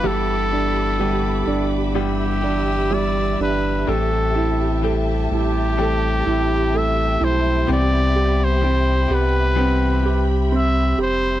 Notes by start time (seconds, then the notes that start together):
Already playing: G4 B5 D6
0.03 G1 G2 D3 E3 G3 B3 G4 A4 E5
0.52 D4
0.98 E3 G3 B3 G4
1.47 G1 D4
1.94 G2 D3 E3 G3 B3 G4 E6
2.42 E3 G3 B3 D4 G4
2.91 G3 D5
3.40 G1 D4 B4
3.87 A1 A2 E3 G3 A3 C4 G4 A4 G5 A5
4.34 G3 C4 E4 G4
4.82 E3 G3 A3 C4 G4
5.31 A1 E4 G4
5.77 A2 E3 G3 A3 C4 G4
6.25 A1 G3 C4 E4 G4
6.74 A3 E5
7.21 B1 E4 C5
7.67 C2 C3 E3 G3 B3 C4 G4 B5
7.73 D5
8.15 G3 B3 G4
8.44 C5
8.62 E3 G3 C4 G4
9.08 C2 G3 B3 G4
9.14 B4
9.55 C3 E3 G3 B3 C4 G4
10.03 G3 G4
10.52 C4
10.56 E5
10.98 F1 G4 C5